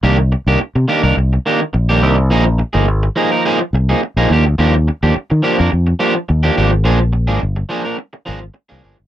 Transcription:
X:1
M:4/4
L:1/16
Q:1/4=106
K:Cm
V:1 name="Clean electric guitar"
[E,B,DG] z2 [E,B,DG] z2 [E,B,DG] [E,B,DB] z2 [E,B,DG] z2 [E,B,DG] [E,B,DG] z | [F,B,EA] z2 [F,B,EA] z2 [F,B,EA] [F,B,EB] [F,B,EA] z2 [F,B,EA] z [F,B,EA] [F,B,DG] z | [F,B,DG] z2 [F,B,DG] z2 [F,B,DG] [F,B,DB] z2 [F,B,DG] z2 [F,B,DG] [F,B,DG] z | [F,B,DA] z2 [F,B,DA] z2 [F,B,DA] [F,B,DB] z2 [F,B,DA] z2 [F,B,DA] [F,B,DA] z |]
V:2 name="Fingered electric bass" clef=bass
C,,3 C,, z C, z C,, C,,2 z2 B,,,2 C,,2 | B,,,3 G,,, A,,,2 z4 C,,2 z B,,, E,, D,, | E,,3 E,, z E, z F,, F,,2 z2 E,,2 A,,,2 | B,,,3 A,,, G,,,2 z4 A,,,2 z C,, G,,, A,,, |]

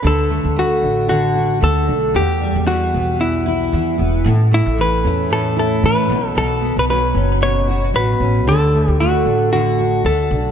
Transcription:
X:1
M:4/4
L:1/16
Q:"Swing 16ths" 1/4=114
K:D
V:1 name="Hollow-body jazz guitar"
A4 F4 F4 A4 | G4 F4 E6 z2 | z2 E2 B4 A2 A2 B4 | A3 B B4 c4 B4 |
A4 F4 F4 A4 |]
V:2 name="Steel-string acoustic guitar"
D,2 A,2 A,2 D2 D,2 F2 A,2 D2 | E,,2 G,2 E,2 B,2 E,,2 E2 E,2 B,2 | A,,2 A,2 E,2 C2 A,,2 E2 E,2 B,,2 | B,,2 B,2 F,2 C2 B,,2 F2 F,2 C2 |
D,2 A,2 A,2 D2 D,2 F2 A,2 D2 |]
V:3 name="Upright bass" clef=bass
D,,3 D,,3 A,,,6 D,,2 B,,,2 | E,,3 E,,3 B,,,6 E,,2 E,,,2 | A,,,3 A,,,3 E,,6 A,,2 B,,,2 | B,,,3 B,,,3 F,,,6 A,,,2 A,,,2 |
D,,3 D,,3 A,,,6 D,,2 B,,,2 |]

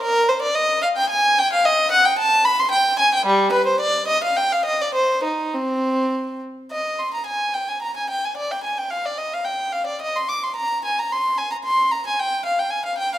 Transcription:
X:1
M:3/4
L:1/16
Q:1/4=110
K:Cm
V:1 name="Violin"
B2 c d e2 f g a2 g f | e2 ^f g =a2 =b c' g2 _a g | G,2 =B c d2 e f g f e d | c2 E2 C6 z2 |
[K:Gphr] e2 c' b a2 g a b a g a | d g a g f d e f g2 f d | e c' d' c' b2 a b c'2 a b | c'2 b a g2 f g a f g f |]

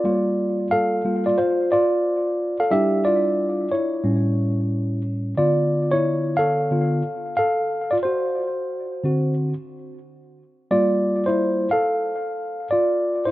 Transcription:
X:1
M:4/4
L:1/16
Q:"Swing 16ths" 1/4=90
K:Dm
V:1 name="Tine electric piano"
d4 [Af]3 [Fd] [Fc]2 [Fd]4- [Fd] [Af] | [Ge]2 [Fd]4 [E^c]8 z2 | d3 [E^c]3 [Af]6 [Af]3 [Fd] | [^Fc]8 z8 |
d3 [Ec]3 [Af]6 [Fd]3 [Ec] |]
V:2 name="Tine electric piano"
[G,B,F]6 [G,B,F]2 z8 | [G,DE]6 z2 [A,,G,^C]8 | [D,=B,F]8 [D,B,F]2 z6 | z6 [D,C^F]2 z8 |
[G,B,F]6 z8 z2 |]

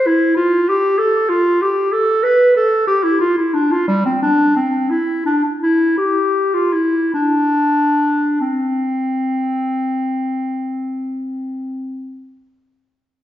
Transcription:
X:1
M:12/8
L:1/16
Q:3/8=56
K:C
V:1 name="Clarinet"
E2 F2 G2 A2 F2 G2 A2 B2 A2 G E F E D F | G, C D2 C2 E2 D2 E2 G3 F E2 D6 | C24 |]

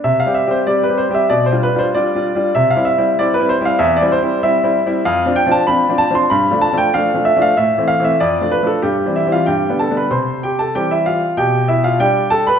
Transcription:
X:1
M:2/4
L:1/16
Q:1/4=96
K:C
V:1 name="Grand piano"
e f e c d B c e | d c B c d4 | e f e2 d B c f | e d c2 e4 |
f2 g a b2 a c' | b2 a g f2 e f | e2 f e d2 B A | G2 [Ee] [Ff] [Gg]2 [Aa] [Bb] |
[cc']2 [Gg] [Aa] [Gg] [Ee] [Ff]2 | [Gg]2 [Ee] [Ff] [Gg]2 [Aa] [Bb] |]
V:2 name="Grand piano"
(3C,2 [G,CG]2 [G,CG]2 (3[G,CG]2 [G,CG]2 [G,CG]2 | (3B,,2 [G,DF]2 [G,DF]2 (3[G,DF]2 [G,DF]2 [G,DF]2 | (3C,2 [G,CE]2 [G,CE]2 (3[G,CE]2 [G,CE]2 [G,CE]2 | (3E,,2 [G,CE]2 [G,CE]2 (3[G,CE]2 [G,CE]2 [G,CE]2 |
(3F,,2 [F,CD]2 [F,CD]2 (3[F,CD]2 [F,CD]2 [F,CD]2 | (3G,,2 [F,A,D]2 [F,A,D]2 (3[F,A,D]2 [F,A,D]2 [F,A,D]2 | (3A,,2 [E,A,C]2 [E,A,C]2 (3F,,2 [F,A,D]2 [F,A,D]2 | (3G,,2 [E,G,C]2 [E,G,C]2 (3G,,2 [D,G,B,]2 [D,G,B,]2 |
C,4 [E,G,C]4 | B,,4 [G,D]4 |]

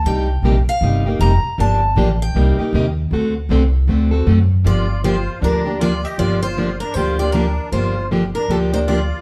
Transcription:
X:1
M:4/4
L:1/16
Q:"Swing" 1/4=156
K:Gm
V:1 name="Steel-string acoustic guitar"
g6 f6 b4 | a6 g6 z4 | z16 | d4 c4 B4 d2 e2 |
d2 c4 B2 c2 d2 B4 | c4 z2 B2 A2 c2 d4 |]
V:2 name="Accordion"
z16 | z16 | z16 | F4 F4 D4 F2 G2 |
F2 F4 D2 F2 F2 D4 | F4 z2 D2 D2 E2 F4 |]
V:3 name="Steel-string acoustic guitar"
[C,G,B,EG]2 z2 [C,G,B,EG] z3 [C,G,B,EG]2 [B,EG]2 [C,G,B,EG] z3 | [D,F,B,DG]2 z2 [D,F,B,DG] z3 [C,G,B,EG]2 [B,EG]2 [C,G,B,EG] z3 | [D,A,C^FA]2 z2 [D,A,CFA] z3 [D,A,CFA]2 [CFA]2 [D,A,CFA] z3 | [D,F,B,DG]2 z2 [D,F,B,DG] z3 [D,F,B,DG]2 [B,DG]2 [D,F,B,DG] z3 |
[D,F,B,DG]2 z2 [D,F,B,DG] z3 [D,F,B,DG]2 [B,DG]2 [D,F,B,DG] z3 | [D,F,B,DG]2 z2 [D,F,B,DG] z3 [D,F,B,DG]2 [B,DG]2 [D,F,B,DG] z3 |]
V:4 name="Upright bass" clef=bass
C,,4 B,,,2 z2 G,,,4 F,,,2 z2 | G,,,4 A,,,4 C,,2 z2 E,,4 | D,,4 C,,4 D,,4 ^F,,4 | G,,,8 D,,8 |
G,,,8 D,,8 | G,,,8 D,,8 |]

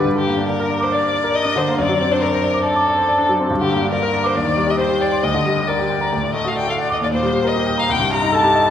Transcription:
X:1
M:4/4
L:1/16
Q:1/4=138
K:Gm
V:1 name="Violin"
z G3 B3 c d4 e2 c2 | d3 c B4 A6 z2 | z G3 B3 c d3 e c2 d2 | e4 d6 e f g f d e |
d c3 e3 f g2 b2 a4 |]
V:2 name="Grand piano"
G,, D, B, D d B d d' d d' d B d D D, B, | ^F,, ^F, C D d c d d' d d' d c d D F, C | G,, D, B, D d B d d' E,, E, G, G c G g c' | D,, D, G, G B G g b D,, A,, A, ^F d A ^f d' |
E,, B,, G, G B G g b C,, G,, G, E A G e a |]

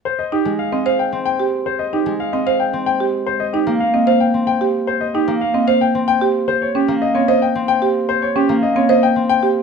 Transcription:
X:1
M:3/4
L:1/16
Q:1/4=112
K:Ab
V:1 name="Grand piano"
c e G z f e f g z g z2 | c e G z f e f g z g z2 | c e G z f e f g z g z2 | c e G z f e f g z g z2 |
c d G z e d e g z g z2 | c d G z e d e g z g z2 |]
V:2 name="Marimba"
z2 E z2 C c z3 G z | z2 E z2 C c z3 G z | z2 E z2 C c z3 G z | z2 E z2 C c z3 G z |
z2 D z2 C c z3 G z | z2 D z2 C c z3 G z |]
V:3 name="Harp"
z3 A,4- A, C4- | C3 A,4- A, C4- | C3 B,4- B, C4- | C3 B,4- B, C4 |
z3 B,4- B, C4- | C3 B,4- B, C4 |]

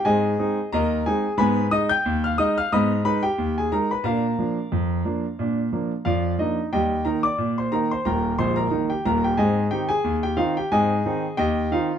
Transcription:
X:1
M:2/4
L:1/16
Q:"Swing 16ths" 1/4=90
K:Ablyd
V:1 name="Grand piano"
[Aea]4 [Beb]2 [Aa]2 | [_ca_c']2 [ee'] [gg']2 [ff'] [ee'] [ff'] | [e_c'e']2 [_cc'] [Gg]2 [Aa] [Bb] [cc'] | [Bfb]8- |
[Bfb]4 [Fdf]2 [Ee]2 | [Geg]2 [Bb] [dd']2 [cc'] [Bb] [cc'] | [Bgb]2 [cc'] [Bb]2 [Gg] [Bb] [Gg] | [Aea]2 [Gg] [Aa]2 [Gg] [Ff] [Gg] |
[Aea]4 [Geg]2 [Ff]2 |]
V:2 name="Grand piano" clef=bass
[A,,C]2 [A,CE]2 E,,2 [A,CE]2 | [A,,_C]2 [A,E]2 E,,2 [A,E]2 | [A,,_C]2 [A,E]2 E,,2 [A,E]2 | [B,,D]2 [F,B,D]2 F,,2 [F,B,D]2 |
[B,,D]2 [F,B,D]2 F,,2 [F,B,D]2 | [E,,G,]2 [E,B,E]2 B,,2 [E,B,E]2 | [E,,,E,,]2 [B,,,,B,,,]2 [E,B,E]2 [E,,,E,,]2 | [A,,C]2 [E,CE]2 E,,2 [E,CE]2 |
[A,,C]2 [E,CE]2 E,,2 [E,CE]2 |]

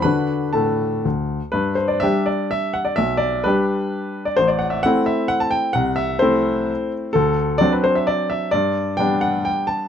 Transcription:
X:1
M:3/4
L:1/16
Q:1/4=127
K:G
V:1 name="Grand piano"
[Bb]4 [Aa]4 z4 | B2 c d e2 d2 e2 f d | e2 d2 B6- B d | c d f e f2 e2 f a g2 |
f2 e2 c6 z2 | A4 d B c e d2 e2 | d4 g2 f2 g2 a2 |]
V:2 name="Grand piano"
[D,DF]4 A,,4 D,,4 | G,,4 [G,DG]8 | B,,,4 [G,DG]8 | A,,,4 [A,CE]8 |
C,,4 [A,CE]8 | D,,4 [F,CD]8 | G,,4 [G,B,D]8 |]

